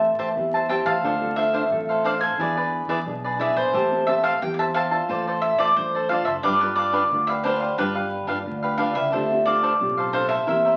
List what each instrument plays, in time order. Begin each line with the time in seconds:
Already playing: fingered electric bass A1, nylon-string guitar A3 C4 G4 B4, cavaquinho C5 E5 A5, mandolin E5
0.18 fingered electric bass A1, cavaquinho G4 C5 E5 A5
0.36 fingered electric bass E2, nylon-string guitar E3 C4 G4 B4
0.54 cavaquinho C5 E5 A5
0.69 nylon-string guitar C4 G4 B4, cavaquinho G4 C5 E5 A5, mandolin G5
0.85 fingered electric bass A1, cavaquinho C5 E5 A5, mandolin F5
1.03 fingered electric bass D2, nylon-string guitar D3 C4 F4 A4, cavaquinho D4 A4 C5 F5
1.21 nylon-string guitar C4 F4 A4
1.36 cavaquinho D4 A4 C5 F5, mandolin E5
1.54 cavaquinho D4 A4 C5 F5
1.71 fingered electric bass A1, nylon-string guitar A2 C4 F4 A4
1.89 cavaquinho A4 C5 F5
2.04 cavaquinho D4 A4 C5 F5, mandolin D5
2.21 cavaquinho A4 C5 F5, mandolin G#5
2.38 fingered electric bass E2, nylon-string guitar E3 D4 G#4 B4, cavaquinho E4 G#4 B4 D5
2.57 cavaquinho G#4 B4 D5
2.88 fingered electric bass E2, cavaquinho E4 G#4 B4 D5
3.06 fingered electric bass B1, nylon-string guitar B2 D4 G#4 B4
3.24 cavaquinho G#4 B4 D5
3.39 nylon-string guitar D4 G#4 B4, cavaquinho E4 G#4 B4 D5, mandolin E5
3.56 fingered electric bass A#1, cavaquinho G#4 B4 D5, mandolin C5
3.73 fingered electric bass A1, nylon-string guitar A3 C4 G4 B4, cavaquinho G4 C5 E5 A5
3.91 nylon-string guitar C4 G4 B4
4.07 nylon-string guitar C4 G4 B4, cavaquinho G4 C5 E5 A5, mandolin E5
4.23 cavaquinho G4 C5 E5 A5, mandolin F5
4.42 fingered electric bass E2, nylon-string guitar E3 C4 G4 B4, mandolin G5
4.54 mandolin F5
4.59 cavaquinho C5 E5 A5, mandolin E5
4.74 cavaquinho G4 C5 E5 A5, mandolin F5
4.91 nylon-string guitar D4 F4 C5, cavaquinho C5 E5 A5
5.08 fingered electric bass A1, nylon-string guitar A3, cavaquinho F4 A4 C5 D5
5.27 cavaquinho A4 C5 D5
5.42 mandolin E5
5.58 fingered electric bass A1, cavaquinho F4 A4 C5 D5, mandolin D5
5.76 fingered electric bass A1, nylon-string guitar A3 D4 F4 C5, mandolin C5
5.95 cavaquinho A4 C5 D5
6.09 nylon-string guitar D4 F4 C5, cavaquinho F4 A4 C5 D5, mandolin F5
6.25 fingered electric bass F#1, cavaquinho A4 C5 D5, mandolin E5
6.43 fingered electric bass G1, nylon-string guitar G3 D4 F4 B4, cavaquinho D4 G4 B4 F5, mandolin D5
6.61 nylon-string guitar D4 F4 B4, mandolin B4
6.76 cavaquinho D4 G4 B4 F5, mandolin D5
6.93 cavaquinho D4 G4 B4 F5
7.11 fingered electric bass D2, nylon-string guitar D3 D4 F4 B4
7.27 cavaquinho G4 B4 F5, mandolin E5
7.44 cavaquinho D4 G4 B4 F5, nylon-string guitar D4 F4 B4, mandolin C5
7.61 cavaquinho G4 B4 F5
7.78 fingered electric bass G1, nylon-string guitar G3 D4 F4 B4, cavaquinho D4 G4 B4 F5, mandolin B4
7.95 cavaquinho G4 B4 F5
8.27 fingered electric bass G1, cavaquinho D4 G4 B4 F5, nylon-string guitar D4 F4 B4
8.46 fingered electric bass D2, nylon-string guitar D3 D4 F4 B4
8.63 cavaquinho G4 B4 F5
8.78 cavaquinho D4 G4 B4 F5, nylon-string guitar D4 F4 B4, mandolin F5
8.94 fingered electric bass C#2, cavaquinho G4 B4 F5, mandolin E5
9.12 fingered electric bass D2, nylon-string guitar D3 C4 F4 G4, cavaquinho D4 A4 C5
9.30 nylon-string guitar C4 F4 G4
9.45 nylon-string guitar C4 F4 G4, cavaquinho D4 A4 C5 F5, mandolin D5
9.63 cavaquinho D4 A4 C5 F5
9.80 fingered electric bass B1, nylon-string guitar A2 C4 F4 G4
9.97 cavaquinho A4 C5 F5
10.13 cavaquinho D4 A4 C5 F5, mandolin C5
10.28 cavaquinho A4 C5 F5, mandolin E5
10.47 fingered electric bass E2, nylon-string guitar E3 A#3 C4 G4, cavaquinho E4 A#4 C5 E5
10.65 cavaquinho A#4 C5 E5